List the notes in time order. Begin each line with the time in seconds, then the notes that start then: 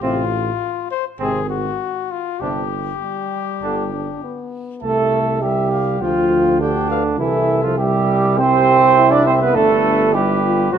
0.01 A1 C3 C4 F4
0.91 C5
1.19 G#1 C3 C4 G#4
1.50 F#4
2.11 F4
2.40 G1 C3 C4 D4 G4
3.02 G3
3.62 G1 D3 D4
3.93 D4
4.24 B3
4.82 C2 A3 A4 E5
5.42 G3 G4 E5
5.71 F5
6.01 D2 F3 F4 G5
6.60 D3 D4 G4 G5
6.90 B4 F5
7.19 C2 E3 E4 A4 E5
7.63 F3 F4
7.78 G3 G4 E5
8.38 C4 C5 E5
8.97 E4
9.11 D4 D5
9.26 C4 C5
9.40 B3 B4
9.55 G1 A3 D4 A4 B4
10.13 G3 E4 G4 B4
10.43 F4
10.72 A1 F#3 F#4 C5